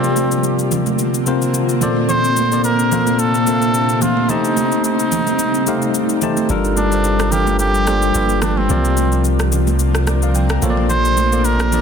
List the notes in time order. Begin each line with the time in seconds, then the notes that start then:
Already playing: C3 D3 A#3 C4 F4 A#4 D5
0.04 shaker
0.16 high conga, shaker
0.31 shaker
0.44 shaker
0.59 shaker
0.71 low conga, shaker
0.86 high conga, shaker
0.99 shaker
1.14 shaker
1.26 C3 C4 F4 A#4 C5, high conga, shaker
1.42 shaker
1.54 shaker
1.69 shaker
1.81 A#2 C3 A#3 C4 D4 A4 C5 D5, high conga, low conga, shaker
1.97 high conga
2.09 C5, low conga, shaker
2.24 shaker
2.37 high conga, shaker
2.52 A#2 A#3 A4 C5 D5, shaker
2.64 A#4, shaker
2.79 shaker
2.92 A#2 A#3 A4 C5 F5, low conga, shaker
3.07 high conga, shaker
3.19 A4, shaker
3.35 shaker
3.47 A#2 A#3 A4 C5 E5, high conga, shaker
3.55 F5
3.62 shaker
3.74 shaker
3.89 shaker
4.02 F4, high conga, low conga, shaker
4.17 high conga
4.29 G3 A3 D#4 G4 C5 A5, low conga, shaker
4.45 shaker
4.57 high conga, shaker
4.72 shaker
4.84 D#4, shaker
4.99 shaker
5.12 low conga, shaker
5.27 high conga, shaker
5.39 shaker
5.55 shaker
5.67 A3 D#4 G4 C5 F5, high conga, shaker
5.82 shaker
5.94 shaker
6.09 shaker
6.22 A3 D#4 G4 C5 A5, high conga, low conga, shaker
6.37 high conga, shaker
6.49 G1 F3 G3 A#3 D4 F4 G4 A4 A#4, low conga, shaker
6.65 shaker
6.77 D4, high conga, shaker
6.92 G3 D4 F4 A4 C5, shaker
7.04 shaker
7.20 cross-stick, shaker
7.32 G3 D4 F4 G4 A4 A#4, low conga, shaker
7.47 high conga, shaker
7.59 G4, shaker
7.75 shaker
7.87 G3 D4 F4 A4 C5, cross-stick, high conga, shaker
8.02 shaker
8.14 G1 G3 D4 F4 A4 B4, shaker
8.29 shaker
8.42 D4, cross-stick, high conga, low conga, shaker
8.57 C4, high conga
8.69 C2 C3 F3 A#3 C4 D4 F4 A#4 D5, low conga, shaker
8.85 shaker
8.97 high conga, shaker
9.12 shaker
9.24 shaker
9.40 cross-stick, shaker
9.52 low conga, shaker
9.67 high conga, shaker
9.79 shaker
9.95 cross-stick, shaker
10.07 A#4 D5, cross-stick, high conga, shaker
10.22 D5 F5, shaker
10.35 G5, shaker
10.50 G5 A#5, cross-stick, shaker
10.62 A#1 C3 A#3 C4 F4 A4 C5 C#5, high conga, low conga, shaker
10.70 D5
10.77 high conga
10.89 C5, low conga, shaker
11.05 shaker
11.17 high conga, shaker
11.32 A#3 F4 A4 C5 D5, shaker
11.45 A#4, shaker
11.60 cross-stick, shaker
11.72 A#3 F4 A4 C5 D5, low conga, shaker